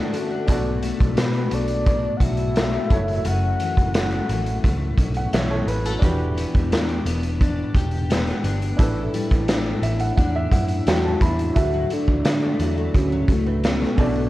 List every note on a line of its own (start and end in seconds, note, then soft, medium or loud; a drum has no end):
0.00 0.47 D3 medium
0.00 0.13 A3 medium
0.00 0.30 D4 medium
0.00 0.44 F#4 medium
0.00 0.48 F#4 medium
0.00 0.45 A4 medium
0.00 0.46 A4 medium
0.00 0.46 D5 medium
0.00 0.46 F#5 medium
0.13 0.82 A3 medium
0.13 0.31 C#4 medium
0.13 0.30 A4 medium
0.13 closed hi-hat medium
0.31 1.17 D4 medium
0.47 0.90 B1 loud
0.47 2.90 B2 medium
0.47 2.86 D4 medium
0.47 2.21 F#4 medium
0.47 2.87 F#4 medium
0.47 2.88 A4 medium
0.47 kick medium
0.47 closed hi-hat medium
0.52 2.89 D5 medium
0.83 1.52 A3 medium
0.83 closed hi-hat medium
1.01 1.15 B1 medium
1.01 kick medium
1.01 closed hi-hat soft
1.17 1.45 B2 loud
1.17 1.86 D4 medium
1.17 1.56 B4 medium
1.17 snare loud
1.17 closed hi-hat medium
1.33 closed hi-hat soft
1.51 2.08 B1 medium
1.51 2.56 A3 medium
1.51 2.18 D5 loud
1.51 closed hi-hat medium
1.68 closed hi-hat medium
1.86 2.98 D4 medium
1.86 kick medium
1.86 closed hi-hat medium
2.17 2.76 B1 medium
2.17 2.25 F#5 medium
2.17 kick medium
2.17 closed hi-hat medium
2.22 3.63 F#4 medium
2.22 3.29 E5 loud
2.37 closed hi-hat medium
2.56 3.95 A3 medium
2.56 snare medium
2.56 closed hi-hat medium
2.89 3.19 F#1 loud
2.89 3.24 F#2 medium
2.89 4.94 E4 medium
2.89 4.94 F#4 medium
2.89 4.95 A4 medium
2.89 kick loud
2.89 closed hi-hat medium
2.94 4.96 C#5 medium
3.08 closed hi-hat medium
3.25 3.53 F#1 loud
3.25 6.02 F#2 medium
3.25 4.98 C#4 medium
3.25 3.96 F#5 loud
3.25 closed hi-hat medium
3.60 4.30 E3 medium
3.60 closed hi-hat medium
3.77 4.19 F#1 medium
3.77 kick medium
3.77 closed hi-hat soft
3.94 4.64 A3 medium
3.94 snare loud
3.94 closed hi-hat loud
3.98 4.62 F#5 medium
4.11 closed hi-hat soft
4.29 4.57 A1 medium
4.29 5.34 E3 medium
4.29 closed hi-hat medium
4.46 closed hi-hat medium
4.64 4.91 C#2 medium
4.64 5.68 A3 medium
4.64 kick medium
4.64 closed hi-hat medium
4.98 5.26 B1 medium
4.98 6.10 C#4 medium
4.98 kick medium
4.98 closed hi-hat medium
5.15 5.33 F#5 medium
5.15 closed hi-hat medium
5.33 5.61 B1 medium
5.33 6.02 E3 medium
5.33 5.49 C#5 medium
5.33 5.50 E5 medium
5.33 snare loud
5.33 closed hi-hat medium
5.50 5.67 A4 medium
5.50 5.67 C#5 medium
5.67 5.95 A1 loud
5.67 5.86 G3 medium
5.67 5.84 B4 medium
5.67 closed hi-hat medium
5.86 6.10 A3 medium
5.86 6.00 F#4 medium
5.86 6.18 A4 medium
5.86 closed hi-hat medium
5.99 6.44 E1 loud
5.99 9.14 E3 medium
5.99 8.74 D4 medium
5.99 8.75 F#4 medium
5.99 8.76 G4 medium
5.99 kick loud
5.99 closed hi-hat medium
6.03 7.76 G4 medium
6.03 8.76 B4 medium
6.37 7.06 B3 medium
6.37 closed hi-hat medium
6.55 6.73 E1 loud
6.55 kick medium
6.55 closed hi-hat soft
6.71 6.99 E2 medium
6.71 7.41 D4 medium
6.71 snare loud
6.71 closed hi-hat loud
6.89 closed hi-hat soft
7.05 7.61 E1 medium
7.05 8.09 B3 medium
7.05 closed hi-hat medium
7.23 closed hi-hat medium
7.41 8.44 D4 medium
7.41 kick medium
7.41 closed hi-hat medium
7.75 8.30 E1 loud
7.75 11.26 G4 medium
7.75 kick medium
7.75 closed hi-hat medium
7.91 closed hi-hat medium
8.10 8.86 B3 medium
8.10 snare loud
8.10 closed hi-hat medium
8.27 snare soft
8.27 closed hi-hat soft
8.44 8.72 G1 medium
8.44 8.79 D4 medium
8.44 closed hi-hat medium
8.62 closed hi-hat medium
8.77 9.07 A1 loud
8.77 11.56 A2 medium
8.77 11.51 D4 medium
8.77 11.51 E4 medium
8.77 10.52 E4 medium
8.77 11.52 A4 medium
8.77 kick loud
8.77 closed hi-hat medium
8.82 11.53 B4 medium
9.14 9.83 G3 medium
9.14 closed hi-hat medium
9.31 9.73 A1 medium
9.31 kick medium
9.31 closed hi-hat medium
9.48 10.18 D4 medium
9.48 snare loud
9.48 closed hi-hat loud
9.82 10.10 A1 medium
9.82 9.99 E5 medium
9.82 closed hi-hat medium
9.99 10.16 F#5 medium
9.99 closed hi-hat medium
10.17 10.45 E2 medium
10.17 11.21 D4 medium
10.17 10.34 F#5 medium
10.17 kick medium
10.17 closed hi-hat medium
10.36 10.52 E5 medium
10.52 10.80 F#2 medium
10.52 11.64 E4 medium
10.52 10.85 F#5 medium
10.52 kick medium
10.52 closed hi-hat medium
10.68 closed hi-hat medium
10.87 11.15 E2 medium
10.87 11.63 G3 medium
10.87 11.25 F#4 loud
10.87 11.03 G5 medium
10.87 snare loud
10.87 closed hi-hat medium
11.05 11.21 A5 medium
11.21 11.49 E2 medium
11.21 11.91 D4 medium
11.21 11.60 E4 loud
11.21 11.54 B5 medium
11.21 kick medium
11.21 closed hi-hat medium
11.39 closed hi-hat medium
11.53 11.84 D2 loud
11.53 13.67 D3 medium
11.53 13.93 E4 medium
11.53 13.93 F#4 medium
11.53 13.95 A4 medium
11.53 11.72 E5 loud
11.53 kick loud
11.53 closed hi-hat medium
11.57 11.95 F#4 loud
11.57 11.73 A4 medium
11.74 12.09 F#3 medium
11.90 12.43 A3 medium
11.90 12.27 D4 medium
11.90 closed hi-hat medium
12.08 12.22 D2 medium
12.08 12.60 F#3 medium
12.08 12.41 F#4 medium
12.08 12.41 D5 medium
12.08 kick medium
12.25 12.53 D3 loud
12.25 12.98 D4 loud
12.25 snare loud
12.25 closed hi-hat loud
12.43 12.77 A3 medium
12.60 12.87 E2 medium
12.60 13.12 F#3 medium
12.60 12.77 E4 medium
12.60 12.76 C#5 medium
12.60 closed hi-hat medium
12.78 13.30 A3 medium
12.95 13.22 D2 medium
12.95 13.34 C#4 loud
12.95 13.12 F#4 medium
12.95 13.11 D5 medium
12.95 kick medium
12.95 closed hi-hat medium
13.12 13.46 F#3 medium
13.28 13.84 C#2 medium
13.28 13.81 A3 medium
13.28 kick medium
13.28 closed hi-hat medium
13.33 13.68 A3 medium
13.47 14.29 F#3 medium
13.47 13.63 D4 medium
13.47 13.63 B4 medium
13.64 14.29 B3 medium
13.64 14.06 C#4 medium
13.64 snare loud
13.64 closed hi-hat medium
13.82 14.15 A3 medium
13.82 snare soft
13.96 14.26 B1 medium
13.96 14.29 B2 medium
13.96 14.04 C#4 medium
13.96 14.15 D4 soft
13.96 14.29 F#4 medium
13.96 14.15 A4 medium
13.96 14.29 A4 medium
13.96 kick loud
13.96 open hi-hat medium
14.01 14.29 D4 medium
14.01 14.29 D5 medium
14.16 14.29 A3 medium